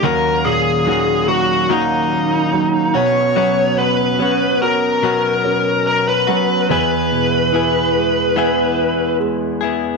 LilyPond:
<<
  \new Staff \with { instrumentName = "Lead electric guitar" } { \time 4/4 \key b \major \tempo 4 = 72 ais'8 gis'4 fis'8 dis'4. cis''8~ | cis''8 b'4 ais'4. ais'16 b'8. | b'2. r4 | }
  \new Staff \with { instrumentName = "Clean electric guitar" } { \time 4/4 \key b \major <dis fis ais cis' fis'>4 <fis ais cis' fis'>4 <dis fis ais cis' fis'>4. <b cis' fis'>8 | <b, fis b cis' fis'>4 <fis b cis' fis'>4 <b, fis b cis' fis'>4. <b cis' fis'>8 | <e b e' gis'>4 <e b e' gis'>4 <e b e' gis'>4. <b e' gis'>8 | }
  \new Staff \with { instrumentName = "Grand piano" } { \clef bass \time 4/4 \key b \major dis,8 ais,8 dis8 fis8 ais4 fis8 b,8 | fis8 b8 cis'8 fis'4 cis'4 fis8 | e,8 b,8 e8 gis8 b4 gis4 | }
>>